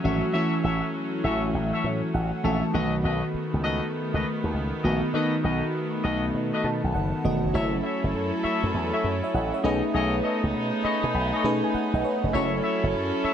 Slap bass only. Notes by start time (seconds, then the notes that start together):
0.04 G#1
0.64 A1
1.24 A1
1.54 A1
1.84 A2
2.14 A1
2.44 A#1
2.74 B1
3.04 B1
3.34 muted slap bass stroke
3.54 C#2
4.14 C#2
4.44 D#2
4.54 C#2
4.84 A#1
5.44 B1
6.04 B1
6.35 B2
6.64 B2
6.84 B1
6.95 F#1
7.25 E1
7.44 F1
7.54 F#1
8.04 F#1
8.14 F#2
8.44 muted slap bass stroke
8.64 F#2
8.74 E2
9.04 F#2
9.34 A1
9.64 B1
9.94 B1
10.44 C#2
10.54 B2
10.84 muted slap bass stroke
11.04 B2
11.14 B1
11.44 B2
11.74 muted slap bass stroke
11.93 B1
12.24 F1
12.34 F#1
12.83 F#1
12.94 F#2
13.24 muted slap bass stroke